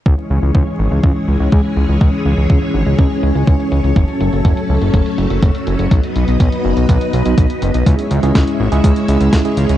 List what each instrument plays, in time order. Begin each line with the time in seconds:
0.06 analog synth bass C#2, string machine E3 G#3 C#4 G#4 C#5, kick, closed hi-hat
0.18 closed hi-hat
0.30 analog synth bass C#2, closed hi-hat
0.42 analog synth bass C#2, closed hi-hat
0.55 analog synth bass C#2, kick, closed hi-hat
0.67 closed hi-hat
0.79 analog synth bass G#1
0.91 analog synth bass C#2, closed hi-hat
1.04 analog synth bass C#2, kick, closed hi-hat
1.16 closed hi-hat
1.28 analog synth bass C#2, closed hi-hat
1.40 analog synth bass C#2, closed hi-hat
1.52 analog synth bass C#2, kick, closed hi-hat
1.65 closed hi-hat
1.76 analog synth bass C#2, closed hi-hat
1.89 analog synth bass C#2, closed hi-hat
2.01 analog synth bass C#2, kick, closed hi-hat
2.13 closed hi-hat
2.25 analog synth bass C#2, closed hi-hat
2.38 analog synth bass C#2, closed hi-hat
2.50 analog synth bass C#2, kick, closed hi-hat
2.62 closed hi-hat
2.74 analog synth bass G#1
2.86 analog synth bass C#2, closed hi-hat
2.99 analog synth bass C#2, kick, closed hi-hat
3.11 closed hi-hat
3.23 analog synth bass C#2, closed hi-hat
3.35 analog synth bass C#2, closed hi-hat
3.47 analog synth bass C#2, kick, closed hi-hat
3.60 closed hi-hat
3.72 analog synth bass C#2, closed hi-hat
3.84 analog synth bass C#2, closed hi-hat
3.96 analog synth bass F#1, string machine F#3 A3 A4, kick, closed hi-hat
4.08 closed hi-hat
4.21 analog synth bass F#1, closed hi-hat
4.33 analog synth bass F#1, closed hi-hat
4.45 analog synth bass F#1, kick, closed hi-hat
4.57 closed hi-hat
4.69 analog synth bass C#2
4.81 analog synth bass F#1, closed hi-hat
4.94 analog synth bass F#1, kick, closed hi-hat
5.06 closed hi-hat
5.18 analog synth bass F#1, closed hi-hat
5.30 analog synth bass F#1, closed hi-hat
5.42 analog synth bass F#1, kick, closed hi-hat
5.55 closed hi-hat
5.67 analog synth bass F#1, closed hi-hat
5.79 analog synth bass F#1, closed hi-hat
5.91 analog synth bass B1, string machine B3 D#4 B4 D#5, kick, closed hi-hat
6.03 closed hi-hat
6.16 analog synth bass B1, closed hi-hat
6.28 analog synth bass B1, closed hi-hat
6.40 analog synth bass B1, kick, closed hi-hat
6.52 closed hi-hat
6.65 analog synth bass F#1
6.77 analog synth bass B1, closed hi-hat
6.89 analog synth bass B1, kick, closed hi-hat
7.01 closed hi-hat
7.13 analog synth bass B1, closed hi-hat
7.25 analog synth bass B1, closed hi-hat
7.38 analog synth bass B1, kick, closed hi-hat
7.50 closed hi-hat
7.62 analog synth bass F#1, closed hi-hat
7.74 analog synth bass B1, closed hi-hat
7.86 analog synth bass C#2, string machine G#3 C#4 E4 C#5 E5, tine electric piano G#3 C#4 E4 G#4, kick, closed hi-hat
7.99 closed hi-hat
8.11 analog synth bass C#2, closed hi-hat
8.23 analog synth bass C#2, tine electric piano G#3 C#4 E4 G#4, closed hi-hat
8.35 analog synth bass C#2, kick, snare, closed hi-hat
8.47 closed hi-hat
8.60 analog synth bass G#1
8.72 analog synth bass C#2, tine electric piano G#3 C#4 E4 G#4, closed hi-hat
8.84 analog synth bass C#2, kick, closed hi-hat
8.96 closed hi-hat
9.08 analog synth bass C#2, tine electric piano G#3 C#4 E4 G#4, closed hi-hat
9.21 analog synth bass C#2, closed hi-hat
9.33 analog synth bass C#2, kick, snare, closed hi-hat
9.45 tine electric piano G#3 C#4 E4 G#4, closed hi-hat
9.57 analog synth bass C#2, closed hi-hat
9.69 analog synth bass C#2, closed hi-hat